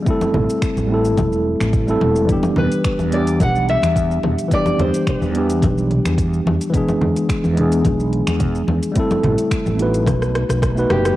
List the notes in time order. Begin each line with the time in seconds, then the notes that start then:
0.03 G3 A3, kick
0.07 C4 E4 A4, shaker
0.21 high conga, shaker
0.34 A1, mid tom, low conga
0.50 shaker
0.62 finger snap, kick, shaker
0.76 A1, high conga, shaker
0.86 G3 A3 C4
0.92 E4 A4
1.05 shaker
1.17 E1, kick, mid tom, high conga, shaker
1.32 shaker
1.60 A1, finger snap, high conga, shaker
1.73 kick, shaker
1.87 G3 A3 C4 E4 A4, shaker
2.01 E1, mid tom, high conga
2.16 shaker
2.25 E3 G3 B3, kick, closed hi-hat, shaker
2.31 D4 G4
2.43 high conga, shaker
2.56 E2 B4, mid tom, low conga
2.72 closed hi-hat, shaker
2.84 finger snap, kick, closed hi-hat, shaker
2.99 E2, high conga, shaker
3.08 E3 G3 B3, closed hi-hat
3.14 D4 G4 D5
3.27 closed hi-hat, shaker
3.40 B1 F#5, kick, closed hi-hat, mid tom, high conga, shaker
3.56 shaker
3.69 E5, closed hi-hat
3.82 E2, finger snap, closed hi-hat, high conga, shaker
3.96 kick, closed hi-hat, shaker
4.11 shaker
4.23 E2, mid tom, high conga
4.38 closed hi-hat, shaker
4.48 E3 G3 B3, kick, closed hi-hat, shaker
4.53 D4 G4 D5
4.66 high conga, shaker
4.79 E2 C5, closed hi-hat, low conga
4.94 closed hi-hat, shaker
5.07 B4, finger snap, kick, closed hi-hat, mid tom, shaker
5.21 E2, high conga, shaker
5.31 E3 G3 B3
5.35 D4 G4, closed hi-hat
5.50 closed hi-hat, shaker
5.62 B1, kick, closed hi-hat, high conga, shaker
5.78 shaker
5.91 closed hi-hat, mid tom
6.05 E2, finger snap, closed hi-hat, high conga, shaker
6.18 kick, closed hi-hat, shaker
6.34 shaker
6.45 E2, high conga
6.61 closed hi-hat, shaker
6.70 E3 G#3 B3, kick
6.74 D4 G#4, closed hi-hat, mid tom, shaker
6.88 high conga, shaker
7.01 E2, low conga
7.16 closed hi-hat, shaker
7.29 finger snap, kick, closed hi-hat, shaker
7.44 E2, high conga, shaker
7.53 E3 G#3
7.57 B3 D4 G#4, closed hi-hat, mid tom
7.72 closed hi-hat, shaker
7.85 B1, kick, closed hi-hat, high conga, shaker
8.00 shaker
8.13 closed hi-hat
8.27 E2, finger snap, closed hi-hat, high conga, shaker
8.40 kick, closed hi-hat, mid tom, shaker
8.55 shaker
8.67 E2, high conga
8.83 closed hi-hat, shaker
8.92 G3 A3 C4, closed hi-hat, shaker
8.96 E4 A4, kick
9.11 high conga, shaker
9.23 A1, closed hi-hat, mid tom, low conga
9.38 closed hi-hat, shaker
9.51 finger snap, kick, closed hi-hat, shaker
9.66 A1, high conga, shaker
9.75 A3 B3 D#4
9.79 F#4 B4, closed hi-hat
9.94 closed hi-hat, shaker
10.06 B1, kick, cross-stick, closed hi-hat, mid tom, high conga, shaker
10.22 cross-stick, shaker
10.35 cross-stick, closed hi-hat
10.49 B1, cross-stick, closed hi-hat, high conga, shaker
10.62 kick, cross-stick, closed hi-hat, shaker
10.75 A3 B3 D#4 F#4, shaker
10.79 B4
10.89 F#1 G4, cross-stick, closed hi-hat, mid tom, high conga
11.05 cross-stick, closed hi-hat, shaker